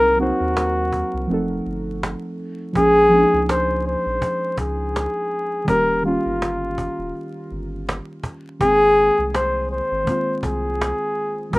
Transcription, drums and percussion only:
0.20 cajon slap
0.57 cajon slap
0.93 cajon bass
1.30 cajon slap
1.66 cajon slap
2.03 cajon slap
2.40 cajon slap
2.75 cajon bass
3.12 cajon slap
3.49 cajon slap
3.86 cajon slap
4.22 cajon bass
4.57 cajon bass
4.96 cajon slap
5.32 cajon slap
5.68 cajon bass
6.05 cajon slap
6.42 cajon slap
6.78 cajon bass
7.15 cajon slap
7.51 cajon slap
7.89 cajon slap
8.23 cajon bass
8.61 cajon bass
8.98 cajon slap
9.35 cajon slap
9.71 cajon slap
10.07 cajon bass
10.43 cajon bass
10.81 cajon slap
11.18 cajon slap
11.53 cajon bass

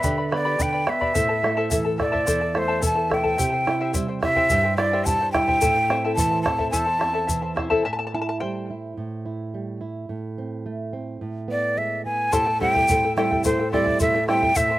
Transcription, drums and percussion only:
0.03 bombo low, shaker
0.32 bombo rim
0.60 bombo low, shaker
0.87 bombo rim
1.02 bombo low
1.15 bombo low, shaker
1.44 bombo rim
1.71 bombo low, shaker
2.00 bombo rim, bombo low
2.14 bombo low
2.27 bombo low, shaker
2.55 bombo rim
2.82 bombo low, shaker
3.12 bombo rim, bombo low
3.25 bombo low
3.39 bombo low, shaker
3.67 bombo rim
3.94 bombo low, shaker
4.23 bombo rim, bombo low
4.36 bombo low
4.50 bombo low, shaker
4.78 bombo rim
5.06 bombo low, shaker
5.35 bombo rim, bombo low
5.48 bombo low
5.61 bombo low, shaker
5.90 bombo rim
6.18 bombo low, shaker
6.46 bombo rim, bombo low
6.59 bombo low
6.73 bombo low, shaker
7.01 bombo rim
7.29 bombo low, shaker
7.57 bombo rim, bombo low
7.71 bombo low
12.33 bombo low, shaker
12.61 bombo low
12.76 bombo low
12.88 bombo low, shaker
13.18 bombo rim
13.32 bombo low
13.44 bombo low, shaker
13.73 bombo low
13.87 bombo low
14.00 bombo low, shaker
14.29 bombo rim
14.43 bombo low
14.55 bombo low, shaker

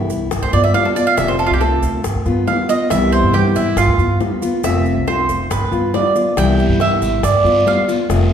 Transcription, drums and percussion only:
0.10 high bongo, maracas
0.31 high bongo, maracas
0.53 high bongo, maracas
0.74 high bongo, low bongo, maracas
0.96 high bongo, maracas
1.17 high bongo, maracas
1.39 maracas
1.61 high bongo, maracas
1.83 high bongo, maracas
2.04 high bongo, maracas
2.26 high bongo, maracas
2.47 high bongo, low bongo, maracas
2.69 high bongo, maracas
2.90 high bongo, maracas
3.13 maracas
3.34 high bongo, maracas
3.56 high bongo, maracas
3.77 high bongo, maracas
3.99 high bongo, maracas
4.21 high bongo, low bongo, maracas
4.42 high bongo, maracas
4.64 high bongo, maracas
4.86 maracas
5.07 high bongo, maracas
5.29 high bongo, maracas
5.51 high bongo, maracas
5.72 high bongo, maracas
5.94 high bongo, low bongo, maracas
6.16 high bongo, maracas
6.37 high bongo, long guiro, maracas
6.59 maracas
6.80 high bongo, short guiro, maracas
7.02 high bongo, short guiro, maracas
7.23 high bongo, long guiro, maracas
7.45 high bongo, maracas
7.66 high bongo, low bongo, short guiro, maracas
7.88 high bongo, short guiro, maracas
8.10 high bongo, long guiro, maracas

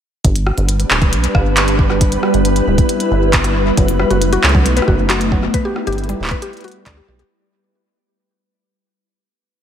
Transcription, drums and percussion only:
0.25 kick, closed hi-hat
0.36 closed hi-hat
0.47 cross-stick
0.58 closed hi-hat
0.69 closed hi-hat
0.80 closed hi-hat
0.91 clap
1.02 kick, closed hi-hat
1.13 closed hi-hat
1.24 closed hi-hat
1.35 kick, cross-stick
1.57 clap, closed hi-hat
1.68 closed hi-hat
1.79 kick
1.90 cross-stick
2.01 kick, closed hi-hat
2.12 closed hi-hat
2.23 cross-stick
2.34 closed hi-hat
2.45 closed hi-hat
2.56 closed hi-hat
2.78 kick, closed hi-hat
2.89 closed hi-hat
3.00 closed hi-hat
3.33 kick, clap, closed hi-hat
3.44 cross-stick, closed hi-hat
3.77 kick, closed hi-hat
3.88 closed hi-hat
3.99 cross-stick
4.11 closed hi-hat
4.22 closed hi-hat
4.33 closed hi-hat
4.44 clap
4.49 closed hi-hat
4.55 kick
4.66 closed hi-hat
4.77 closed hi-hat
4.82 cross-stick
4.88 kick
5.10 clap, closed hi-hat
5.21 closed hi-hat
5.32 kick
5.43 cross-stick
5.54 kick, closed hi-hat
5.76 cross-stick
5.87 closed hi-hat
5.93 closed hi-hat
5.98 closed hi-hat
6.04 closed hi-hat
6.09 closed hi-hat
6.24 clap
6.27 kick, clap, closed hi-hat
6.42 closed hi-hat
6.53 closed hi-hat
6.57 closed hi-hat
6.61 closed hi-hat
6.64 closed hi-hat
6.68 closed hi-hat
6.72 closed hi-hat
6.86 kick, clap, closed hi-hat
6.97 cross-stick
7.19 closed hi-hat

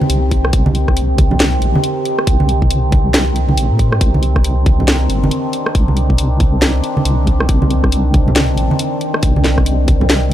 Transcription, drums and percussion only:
0.01 high conga
0.10 closed hi-hat
0.31 kick, closed hi-hat
0.45 cross-stick
0.53 kick, closed hi-hat
0.66 high conga
0.75 closed hi-hat
0.88 kick, cross-stick
0.97 closed hi-hat
1.18 kick, closed hi-hat, high conga
1.31 low conga
1.40 snare, closed hi-hat
1.62 closed hi-hat
1.75 high conga
1.84 closed hi-hat
2.05 closed hi-hat
2.19 cross-stick
2.27 kick, closed hi-hat
2.40 high conga
2.49 closed hi-hat
2.62 kick
2.71 closed hi-hat
2.92 kick, closed hi-hat, high conga
3.14 snare, closed hi-hat
3.36 closed hi-hat
3.49 high conga
3.58 closed hi-hat
3.79 kick, closed hi-hat
3.92 cross-stick
4.01 kick, closed hi-hat
4.14 high conga
4.23 closed hi-hat
4.36 kick, cross-stick
4.44 closed hi-hat
4.66 kick, closed hi-hat, high conga
4.80 low conga
4.88 snare, closed hi-hat
5.10 closed hi-hat
5.24 high conga
5.31 closed hi-hat
5.53 closed hi-hat
5.66 cross-stick
5.75 kick, closed hi-hat
5.88 high conga
5.97 closed hi-hat
6.10 kick
6.18 closed hi-hat
6.40 kick, closed hi-hat, high conga
6.62 snare, closed hi-hat
6.84 closed hi-hat
6.97 high conga
7.05 closed hi-hat
7.27 kick, closed hi-hat
7.40 cross-stick
7.49 kick, closed hi-hat
7.62 high conga
7.71 closed hi-hat
7.84 kick, cross-stick
7.92 closed hi-hat
8.14 kick, closed hi-hat, high conga
8.28 low conga
8.36 snare, closed hi-hat
8.58 closed hi-hat
8.71 high conga
8.79 closed hi-hat
9.01 closed hi-hat
9.14 cross-stick
9.23 kick, closed hi-hat
9.36 high conga
9.44 snare, closed hi-hat
9.58 kick, cross-stick
9.66 closed hi-hat
9.88 kick, closed hi-hat, high conga
10.01 low conga
10.10 snare, closed hi-hat

